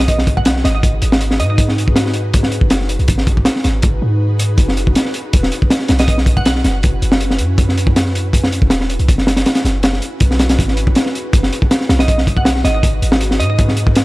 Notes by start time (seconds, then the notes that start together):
Already playing: B1
0.08 D#5, kick, closed hi-hat
0.18 snare
0.27 kick, closed hi-hat
0.37 D#4 F#4 G#4 B4 F#5, kick
0.45 F#5, snare, closed hi-hat
0.56 snare
0.64 G#1 D#5, snare, closed hi-hat
0.75 D#5
0.83 kick, closed hi-hat
1.02 G#1, closed hi-hat
1.12 snare
1.21 closed hi-hat
1.31 snare
1.40 G#2 D#5, closed hi-hat
1.50 D#5
1.58 kick, closed hi-hat
1.69 snare
1.78 closed hi-hat
1.88 kick
1.96 snare, closed hi-hat
2.06 snare
2.14 closed hi-hat
2.34 kick, closed hi-hat
2.43 snare
2.52 closed hi-hat
2.61 F#1, kick
2.70 snare, closed hi-hat
2.81 snare
2.89 closed hi-hat
2.99 B1, closed hi-hat
3.08 G#1, kick, closed hi-hat
3.18 snare
3.27 kick, closed hi-hat
3.37 kick
3.45 snare, closed hi-hat
3.56 snare
3.64 G#1, snare, closed hi-hat
3.82 kick, closed hi-hat
4.02 G#2
4.39 closed hi-hat
4.58 F#1, kick, closed hi-hat
4.68 snare
4.77 closed hi-hat
4.87 kick
4.95 snare, closed hi-hat
5.05 snare
5.14 closed hi-hat
5.33 E1, kick, closed hi-hat
5.43 snare
5.52 closed hi-hat
5.62 kick
5.70 snare, closed hi-hat
5.79 snare
5.88 B1, snare, closed hi-hat
5.99 D#5, snare, closed hi-hat
6.08 D#5, kick, closed hi-hat
6.18 snare
6.26 kick, closed hi-hat
6.37 C#4 E4 F#4 B4 F#5, kick
6.45 F#5, snare, closed hi-hat
6.56 snare
6.64 F#1, snare, closed hi-hat
6.83 kick, closed hi-hat
7.02 F#1, closed hi-hat
7.12 snare
7.20 closed hi-hat
7.31 snare
7.39 F#2, closed hi-hat
7.58 kick, closed hi-hat
7.69 snare
7.78 closed hi-hat
7.87 kick
7.96 snare, closed hi-hat
8.05 snare
8.15 closed hi-hat
8.33 kick, closed hi-hat
8.44 snare
8.52 closed hi-hat
8.62 E1, kick
8.70 snare, closed hi-hat
8.81 snare
8.90 closed hi-hat
8.99 B1, closed hi-hat
9.08 F#1, kick, closed hi-hat
9.18 snare
9.27 snare, closed hi-hat
9.37 snare, closed hi-hat
9.46 snare, closed hi-hat
9.55 snare, closed hi-hat
9.65 F#1, snare, closed hi-hat
9.83 snare, closed hi-hat
9.93 snare
10.02 closed hi-hat
10.20 B1, kick, closed hi-hat
10.31 snare
10.39 snare, closed hi-hat
10.49 snare, closed hi-hat
10.59 G#1, kick, closed hi-hat
10.68 snare
10.77 closed hi-hat
10.87 kick
10.95 snare, closed hi-hat
11.06 snare
11.15 closed hi-hat
11.33 F#1, kick, closed hi-hat
11.43 snare
11.53 closed hi-hat
11.62 kick
11.71 snare, closed hi-hat
11.81 snare
11.89 B1, snare, closed hi-hat
11.99 D#5, snare, closed hi-hat
12.08 D#5, kick, closed hi-hat
12.18 snare
12.27 kick, closed hi-hat
12.37 D#4 F#4 G#4 B4 F#5, kick
12.45 F#5, snare, closed hi-hat
12.56 snare
12.64 G#1 D#5, snare, closed hi-hat
12.75 D#5
12.83 kick, closed hi-hat
13.02 G#1, closed hi-hat
13.12 snare
13.21 closed hi-hat
13.31 snare
13.39 G#2 D#5, closed hi-hat
13.50 D#5
13.59 kick, closed hi-hat
13.68 snare
13.77 closed hi-hat
13.87 kick
13.95 snare, closed hi-hat